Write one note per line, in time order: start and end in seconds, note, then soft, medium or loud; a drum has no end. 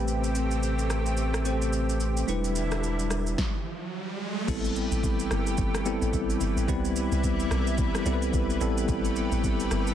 0.00 2.24 A1 medium
0.00 2.24 C3 medium
0.00 1.42 A3 medium
0.00 2.26 A3 medium
0.00 1.42 C4 medium
0.00 3.35 C4 medium
0.00 1.43 G4 medium
0.00 2.26 G4 medium
0.00 1.43 B4 medium
0.00 2.30 G5 medium
0.08 shaker medium
0.24 shaker medium
0.35 shaker medium
0.51 shaker soft
0.63 shaker medium
0.79 shaker soft
0.90 cross-stick medium
0.90 shaker medium
1.06 shaker soft
1.17 shaker medium
1.34 cross-stick medium
1.34 shaker medium
1.45 2.28 A3 medium
1.45 2.28 C4 medium
1.45 2.28 G4 medium
1.45 2.28 C5 medium
1.45 shaker medium
1.62 shaker soft
1.73 shaker medium
1.89 shaker soft
2.00 shaker medium
2.17 shaker medium
2.27 3.36 E1 medium
2.27 3.37 D3 medium
2.27 3.35 G3 medium
2.27 3.37 G3 medium
2.27 3.36 D4 medium
2.27 3.37 E4 medium
2.27 3.36 E4 medium
2.27 3.37 B4 medium
2.27 riser medium
2.27 shaker medium
2.44 shaker medium
2.56 shaker medium
2.72 cross-stick medium
2.72 shaker soft
2.84 shaker medium
2.99 shaker medium
3.11 cross-stick medium
3.11 shaker medium
3.27 shaker soft
3.38 kick loud
3.38 snare medium
4.48 4.88 A1 loud
4.48 9.94 E3 medium
4.48 5.37 G3 medium
4.48 6.66 A3 medium
4.48 5.37 B3 medium
4.48 5.37 C4 medium
4.48 5.37 E4 medium
4.48 6.66 G4 medium
4.48 5.38 A4 medium
4.48 9.94 B4 medium
4.48 kick loud
4.48 crash loud
4.48 shaker medium
4.65 shaker medium
4.76 shaker medium
4.92 5.28 A1 loud
4.92 shaker medium
5.04 kick loud
5.04 shaker medium
5.20 shaker medium
5.31 5.56 G1 medium
5.31 cross-stick medium
5.31 shaker medium
5.47 shaker medium
5.58 5.98 G1 loud
5.58 kick loud
5.58 shaker medium
5.75 cross-stick loud
5.75 shaker medium
5.86 6.54 G3 medium
5.86 6.54 B3 medium
5.86 6.54 C4 medium
5.86 6.54 E4 medium
5.86 6.54 A4 loud
5.86 shaker medium
6.02 6.12 A1 medium
6.02 shaker medium
6.13 6.39 A1 loud
6.13 kick loud
6.13 shaker medium
6.30 shaker medium
6.41 6.56 G1 loud
6.41 shaker medium
6.57 6.67 A1 medium
6.57 shaker medium
6.68 7.08 C2 loud
6.68 7.57 G3 medium
6.68 8.59 G3 medium
6.68 7.57 B3 medium
6.68 7.57 C4 medium
6.68 8.59 E4 medium
6.68 7.58 E4 medium
6.68 7.58 B4 loud
6.68 kick loud
6.68 shaker medium
6.85 shaker medium
6.96 shaker medium
7.12 7.48 C2 loud
7.12 shaker medium
7.24 kick medium
7.24 shaker medium
7.40 shaker medium
7.51 7.91 B1 loud
7.51 cross-stick medium
7.51 shaker medium
7.67 shaker medium
7.78 kick loud
7.78 shaker medium
7.95 cross-stick medium
7.95 shaker medium
8.06 8.31 C2 medium
8.06 8.59 G3 medium
8.06 8.60 B3 medium
8.06 8.60 C4 medium
8.06 8.60 E4 medium
8.06 8.14 A4 medium
8.06 shaker medium
8.13 8.65 B4 loud
8.22 shaker medium
8.34 8.59 B1 loud
8.34 kick loud
8.34 shaker medium
8.50 shaker medium
8.61 8.86 A1 loud
8.61 9.50 G3 loud
8.61 9.94 A3 medium
8.61 9.50 B3 medium
8.61 9.50 C4 medium
8.61 9.50 E4 medium
8.61 9.94 G4 loud
8.61 9.50 A4 loud
8.61 shaker medium
8.78 shaker medium
8.89 9.29 A1 loud
8.89 kick loud
8.89 shaker medium
9.05 shaker medium
9.16 shaker medium
9.32 9.68 A1 loud
9.32 shaker medium
9.44 kick medium
9.44 shaker medium
9.60 shaker medium
9.71 9.94 G1 loud
9.71 cross-stick medium
9.71 shaker medium
9.87 shaker medium